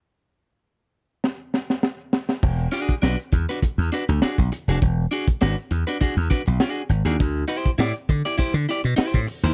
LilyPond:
<<
  \new Staff \with { instrumentName = "Clean electric guitar" } { \time 4/4 \key e \mixolydian \tempo 4 = 101 r1 | r8 <d' fis' gis'>16 r16 <d' fis' b'>16 r8 <d' fis' b'>16 r8 <d' fis' b'>16 r16 <d' fis' gis'>16 r8 <d' fis' gis'>16 | r8 <d' fis' gis'>16 r16 <d' fis' b'>16 r8 <d' fis' b'>16 <d' fis' gis'>16 r16 <d' fis' b'>16 r16 <d' fis' gis'>16 r8 <d' fis' gis'>16 | r8 <e' g' c''>16 r16 <e' g' d''>16 r8 <e' g' d''>16 <e' g' c''>16 r16 <e' g' d''>16 r16 <e' g' c''>16 r8 <e' g' c''>16 | }
  \new Staff \with { instrumentName = "Slap bass" } { \clef bass \time 4/4 \key e \mixolydian r1 | e,,8 r8 b,,16 r16 e,16 r8 e,16 r16 d,16 r16 b,,16 r16 f,,16 | e,,8 r8 gis,,16 r16 e,16 r8 e,16 r16 b,,16 r8 gis,,16 dis,16 | d,8 r8 a,16 r16 d16 r8 d16 r16 b,16 r16 a,16 r16 dis,16 | }
  \new DrumStaff \with { instrumentName = "Drums" } \drummode { \time 4/4 r4 r4 sn8 sn16 sn16 sn8 sn16 sn16 | <cymc bd>16 hh16 hh16 <hh bd>16 sn16 hh16 <hh bd>16 <hh sn>16 <hh bd>16 hh16 <hh sn>16 hh16 sn16 <hh bd>16 hh16 hh16 | <hh bd>8 hh16 <hh bd>16 sn16 hh16 hh16 <hh sn>16 <hh bd>8 <hh bd sn>16 hh16 sn16 hh16 hh16 hh16 | <hh bd>16 hh16 hh16 <hh bd>16 sn16 hh16 <hh bd>16 <hh sn>16 <hh bd>16 hh16 <hh sn>16 hh16 sn16 <hh bd>16 hho16 hh16 | }
>>